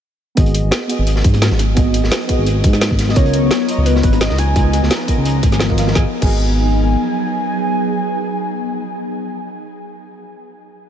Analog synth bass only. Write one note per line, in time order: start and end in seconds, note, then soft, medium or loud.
0.37 0.63 G#1 medium
0.64 0.71 G#1 medium
0.99 1.23 G#1 medium
1.24 1.50 G#2 loud
1.51 1.75 G#1 medium
1.77 2.02 G#1 loud
2.04 2.11 G#1 medium
2.38 2.63 G#1 loud
2.64 2.89 G#2 loud
2.91 3.15 G#1 medium
3.16 3.42 C#2 loud
3.43 3.50 C#2 medium
3.78 4.02 C#2 loud
4.04 4.29 G#1 loud
4.30 4.55 C#2 medium
4.56 4.81 C#2 loud
4.83 4.90 C#2 medium
5.17 5.42 C#2 loud
5.43 5.68 G#1 medium
5.70 5.94 G#1 loud
5.95 6.06 G#1 loud
6.22 6.96 G#1 loud